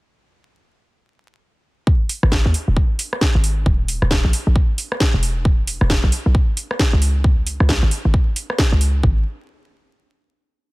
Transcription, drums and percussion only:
1.87 kick loud
2.09 open hi-hat loud
2.23 cross-stick medium
2.32 kick loud
2.32 snare loud
2.54 open hi-hat medium
2.77 kick loud
2.99 open hi-hat loud
3.13 cross-stick medium
3.21 kick loud
3.21 snare loud
3.44 open hi-hat medium
3.66 kick loud
3.88 open hi-hat loud
4.02 cross-stick medium
4.11 kick loud
4.11 snare loud
4.33 open hi-hat medium
4.56 kick loud
4.78 open hi-hat loud
4.92 cross-stick medium
5.00 kick loud
5.00 snare loud
5.23 open hi-hat medium
5.45 kick loud
5.67 open hi-hat loud
5.81 cross-stick medium
5.90 kick loud
5.90 snare loud
6.12 open hi-hat medium
6.35 kick loud
6.57 open hi-hat loud
6.71 cross-stick medium
6.79 kick loud
6.79 snare loud
7.02 open hi-hat medium
7.24 kick loud
7.47 open hi-hat loud
7.60 cross-stick soft
7.69 kick loud
7.69 snare loud
7.91 open hi-hat medium
8.14 kick loud
8.36 open hi-hat loud
8.50 cross-stick medium
8.58 kick loud
8.58 snare loud
8.81 open hi-hat medium
9.03 kick loud

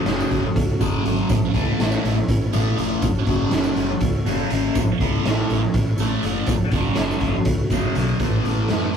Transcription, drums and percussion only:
0.06 snare loud
0.06 closed hi-hat medium
0.06 tambourine soft
0.20 tambourine medium
0.31 kick medium
0.31 closed hi-hat medium
0.56 kick loud
0.56 closed hi-hat medium
0.56 tambourine soft
0.69 tambourine soft
0.81 kick medium
0.81 closed hi-hat medium
0.81 tambourine medium
1.05 closed hi-hat medium
1.05 tambourine soft
1.16 tambourine soft
1.29 kick loud
1.29 closed hi-hat medium
1.29 tambourine medium
1.54 kick medium
1.54 closed hi-hat medium
1.80 snare loud
1.80 closed hi-hat medium
1.80 tambourine soft
1.92 tambourine medium
2.05 closed hi-hat medium
2.28 kick loud
2.28 closed hi-hat medium
2.28 tambourine soft
2.41 tambourine soft
2.53 closed hi-hat medium
2.53 tambourine medium
2.78 closed hi-hat medium
2.78 tambourine soft
3.02 kick loud
3.02 closed hi-hat medium
3.02 tambourine medium
3.15 tambourine soft
3.27 kick medium
3.27 closed hi-hat medium
3.51 snare loud
3.51 closed hi-hat loud
3.51 tambourine soft
3.64 tambourine medium
3.76 closed hi-hat medium
4.01 kick loud
4.01 closed hi-hat medium
4.01 tambourine soft
4.13 tambourine soft
4.26 closed hi-hat medium
4.50 closed hi-hat medium
4.50 tambourine soft
4.75 kick loud
4.75 closed hi-hat medium
4.75 tambourine medium
4.88 tambourine soft
5.00 kick medium
5.00 closed hi-hat medium
5.25 snare loud
5.25 closed hi-hat medium
5.25 tambourine soft
5.50 closed hi-hat medium
5.74 kick medium
5.74 snare soft
5.74 closed hi-hat medium
5.74 tambourine soft
5.86 tambourine soft
5.98 closed hi-hat medium
5.98 tambourine medium
6.23 closed hi-hat medium
6.23 tambourine soft
6.46 kick loud
6.46 closed hi-hat medium
6.46 tambourine medium
6.72 kick medium
6.72 closed hi-hat medium
6.72 tambourine soft
6.96 snare loud
6.96 closed hi-hat loud
6.96 tambourine soft
7.11 tambourine medium
7.20 kick medium
7.20 closed hi-hat medium
7.45 kick loud
7.45 closed hi-hat medium
7.45 tambourine soft
7.70 kick medium
7.70 snare soft
7.70 closed hi-hat medium
7.70 tambourine medium
7.95 closed hi-hat medium
7.95 tambourine soft
8.08 tambourine soft
8.20 kick medium
8.20 closed hi-hat medium
8.45 closed hi-hat medium
8.69 snare loud
8.69 closed hi-hat medium

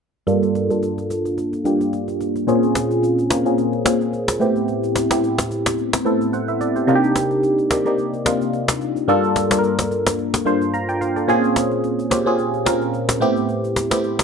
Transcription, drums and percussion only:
0.28 cajon slap soft
0.43 cajon slap soft
0.55 cajon slap soft
0.70 cajon slap soft
0.83 cajon slap soft
0.98 cajon slap soft
1.10 cajon slap soft
1.25 cajon slap soft
1.38 cajon slap soft
1.53 cajon slap soft
1.65 cajon slap soft
1.81 cajon slap soft
1.93 cajon slap soft
2.08 cajon slap soft
2.21 cajon slap medium
2.36 cajon slap soft
2.48 cajon slap soft
2.63 cajon slap soft
2.75 cajon slap medium
2.91 cajon slap soft
3.03 cajon slap soft
3.18 cajon slap soft
3.31 cajon slap medium
3.46 cajon slap soft
3.58 cajon slap soft
3.73 cajon slap soft
3.86 cajon slap loud
4.01 cajon slap soft
4.13 cajon slap soft
4.28 cajon slap medium
4.41 cajon slap soft
4.56 cajon slap soft
4.68 cajon slap soft
4.83 cajon slap soft
4.96 cajon slap medium
5.11 cajon slap medium
5.23 cajon slap soft
5.38 cajon slap medium
5.51 cajon slap soft
5.66 cajon slap medium
5.78 cajon slap soft
5.93 cajon slap medium
6.06 cajon slap soft
6.21 cajon slap soft
6.33 cajon slap soft
6.48 cajon slap soft
6.61 cajon slap medium
6.76 cajon slap soft
6.88 cajon slap soft
7.03 cajon slap soft
7.16 cajon slap medium
7.31 cajon slap soft
7.43 cajon slap soft
7.58 cajon slap soft
7.71 cajon slap medium
7.86 cajon slap soft
7.98 cajon slap soft
8.13 cajon slap soft
8.26 cajon slap loud
8.41 cajon slap soft
8.53 cajon slap soft
8.68 cajon slap loud
8.81 cajon slap soft
8.96 cajon slap soft
9.08 cajon slap soft
9.24 cajon slap soft
9.36 cajon slap medium
9.51 cajon slap medium
9.63 cajon slap soft
9.79 cajon slap medium
9.91 cajon slap medium
10.07 cajon slap medium
10.19 cajon slap soft
10.34 cajon slap medium
10.46 cajon slap soft
10.62 cajon slap soft
10.74 cajon slap soft
10.89 cajon slap soft
11.01 cajon slap medium
11.16 cajon slap soft
11.29 cajon slap soft
11.44 cajon slap soft
11.56 cajon slap medium
11.71 cajon slap soft
11.84 cajon slap soft
11.99 cajon slap soft
12.11 cajon slap medium
12.26 cajon slap soft
12.39 cajon slap soft
12.54 cajon slap soft
12.66 cajon slap loud
12.82 cajon slap soft
12.94 cajon slap soft
13.09 cajon slap loud
13.21 cajon slap soft
13.36 cajon slap soft
13.49 cajon slap soft
13.64 cajon slap soft
13.76 cajon slap medium
13.91 cajon slap medium
14.04 cajon slap soft
14.19 cajon slap medium

